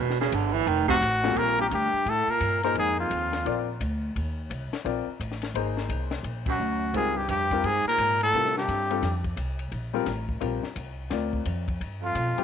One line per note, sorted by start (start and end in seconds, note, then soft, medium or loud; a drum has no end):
0.00 0.31 E1 loud
0.00 0.20 B2 loud
0.10 snare soft
0.21 0.36 C#3 medium
0.21 snare soft
0.32 0.66 G1 medium
0.32 0.55 D3 loud
0.32 kick soft
0.32 hi-hat pedal medium
0.32 ride medium
0.53 0.69 E3 loud
0.66 1.00 F1 medium
0.66 0.88 D#3 loud
0.66 kick soft
0.66 ride medium
0.88 0.96 C3 loud
0.88 1.40 F#4 loud
0.88 kick medium
1.01 1.35 A1 loud
1.01 kick soft
1.01 hi-hat pedal medium
1.01 ride medium
1.23 1.69 A#2 medium
1.23 1.69 G3 medium
1.23 1.69 C4 medium
1.23 1.70 F4 medium
1.23 1.69 A4 medium
1.23 snare medium
1.23 ride medium
1.35 1.70 A#1 medium
1.35 1.58 A#2 medium
1.35 1.60 A#4 loud
1.35 kick soft
1.35 ride medium
1.59 1.64 G2 medium
1.59 1.67 G4 medium
1.70 1.92 D2 medium
1.70 2.08 G2 medium
1.70 2.11 G4 medium
1.70 kick soft
1.70 hi-hat pedal soft
1.70 ride medium
1.93 muted upright bass stroke soft
2.05 2.27 A2 medium
2.05 2.31 A2 medium
2.05 kick soft
2.05 ride medium
2.09 2.32 A4 medium
2.27 2.63 A#2 medium
2.27 2.63 A#4 medium
2.27 muted upright bass stroke soft
2.40 2.74 G2 medium
2.40 kick soft
2.40 hi-hat pedal medium
2.40 ride medium
2.63 2.76 A#2 medium
2.63 3.09 A#3 medium
2.63 3.09 D#4 medium
2.63 3.09 G#4 medium
2.63 2.76 A#4 medium
2.63 3.09 C5 medium
2.63 ride soft
2.75 3.09 F2 medium
2.75 2.98 G#2 medium
2.75 kick soft
2.75 ride medium
2.79 2.98 G#4 medium
3.00 3.65 F2 medium
3.00 3.65 F4 medium
3.10 3.44 D#2 medium
3.10 kick soft
3.10 hi-hat pedal medium
3.10 ride medium
3.33 snare soft
3.33 ride soft
3.45 3.79 A#1 medium
3.45 3.66 C4 medium
3.45 3.66 F4 medium
3.45 3.66 A#4 medium
3.45 3.66 D5 medium
3.45 kick soft
3.45 ride medium
3.80 4.14 D2 medium
3.80 kick soft
3.80 hi-hat pedal medium
3.80 ride medium
4.16 4.50 D#2 medium
4.16 kick soft
4.16 ride medium
4.50 4.71 C2 medium
4.50 kick soft
4.50 hi-hat pedal soft
4.50 ride medium
4.72 muted upright bass stroke soft
4.72 snare soft
4.72 ride soft
4.85 5.06 A#1 medium
4.85 5.05 C4 medium
4.85 5.05 F4 medium
4.85 5.05 A#4 medium
4.85 5.05 D5 medium
4.85 kick soft
4.85 ride medium
5.07 muted upright bass stroke soft
5.20 5.54 A1 medium
5.20 kick soft
5.20 hi-hat pedal medium
5.20 ride medium
5.32 snare soft
5.42 snare soft
5.42 ride soft
5.54 5.88 G#1 medium
5.54 6.52 A#3 medium
5.54 6.52 D#4 soft
5.54 6.53 G#4 soft
5.54 6.52 C5 medium
5.54 kick soft
5.54 ride medium
5.77 snare soft
5.89 6.23 C2 medium
5.89 kick soft
5.89 hi-hat pedal soft
5.89 ride medium
6.11 snare soft
6.11 ride soft
6.23 6.58 A#1 medium
6.23 kick soft
6.23 ride medium
6.46 6.92 F#2 medium
6.46 6.93 F#4 medium
6.46 kick medium
6.46 ride medium
6.59 6.93 D2 medium
6.59 hi-hat pedal medium
6.93 7.27 C#2 medium
6.93 7.16 G#2 medium
6.93 7.15 G3 medium
6.93 7.15 C4 soft
6.93 7.15 F4 medium
6.93 7.19 G#4 medium
6.93 7.15 A#4 medium
6.93 kick soft
6.93 ride medium
7.14 7.27 G2 medium
7.14 7.30 G4 medium
7.28 7.62 F2 medium
7.28 7.66 G2 medium
7.28 7.67 G4 medium
7.28 kick soft
7.28 hi-hat pedal medium
7.28 ride medium
7.51 7.63 G3 medium
7.51 7.63 C4 medium
7.51 7.63 F4 medium
7.51 7.64 A#4 medium
7.51 kick soft
7.51 ride soft
7.63 7.84 G2 medium
7.63 7.86 G#2 medium
7.63 7.87 G#4 medium
7.63 kick soft
7.63 ride medium
7.85 8.19 A#2 medium
7.85 8.19 A#4 loud
7.85 muted upright bass stroke soft
7.98 8.32 G#2 medium
7.98 kick soft
7.98 hi-hat pedal medium
7.98 ride medium
8.21 8.54 A2 medium
8.21 8.54 A4 medium
8.21 ride soft
8.33 8.67 C3 medium
8.33 8.87 G3 medium
8.33 8.86 C4 medium
8.33 8.87 F4 soft
8.33 8.87 A#4 medium
8.33 kick soft
8.33 ride medium
8.45 snare soft
8.57 9.22 G2 medium
8.57 9.22 G4 medium
8.57 snare soft
8.68 9.01 G2 medium
8.68 kick soft
8.68 hi-hat pedal medium
8.68 ride medium
8.90 9.02 G3 medium
8.90 9.02 C4 medium
8.90 9.02 F4 medium
8.90 9.02 A4 medium
8.90 ride soft
9.02 9.36 F2 medium
9.02 kick soft
9.02 snare soft
9.02 ride medium
9.24 kick soft
9.24 ride soft
9.36 9.71 C2 medium
9.36 kick soft
9.36 hi-hat pedal medium
9.36 ride medium
9.59 ride soft
9.72 10.06 A#1 medium
9.72 kick soft
9.72 ride medium
9.93 10.05 G3 medium
9.93 10.06 C4 medium
9.93 10.06 F4 medium
9.93 10.06 A#4 medium
10.06 10.40 A1 medium
10.06 kick soft
10.06 snare soft
10.06 hi-hat pedal medium
10.06 ride medium
10.29 kick soft
10.40 10.62 A#1 medium
10.40 10.61 G3 medium
10.40 10.61 C4 medium
10.40 10.61 F4 medium
10.40 10.61 A#4 medium
10.40 kick soft
10.40 ride medium
10.63 snare soft
10.76 11.10 C2 medium
10.76 kick soft
10.76 hi-hat pedal medium
10.76 ride medium
11.10 11.45 D2 medium
11.10 11.64 C4 soft
11.10 11.64 F4 soft
11.10 11.64 A#4 soft
11.10 11.64 D5 medium
11.10 kick soft
11.10 snare soft
11.10 ride medium
11.33 kick soft
11.45 11.80 F2 medium
11.45 kick soft
11.45 hi-hat pedal medium
11.45 ride medium
11.68 kick medium
11.68 ride soft
11.81 12.14 G2 medium
11.81 kick soft
11.81 ride medium
12.02 12.44 F2 medium
12.02 12.44 F4 medium
12.15 12.36 B2 medium
12.15 kick soft
12.15 hi-hat pedal medium
12.15 ride medium
12.38 12.44 G3 medium
12.38 12.44 C4 medium
12.38 12.44 F4 medium
12.38 12.44 G4 medium
12.38 muted upright bass stroke soft
12.38 ride soft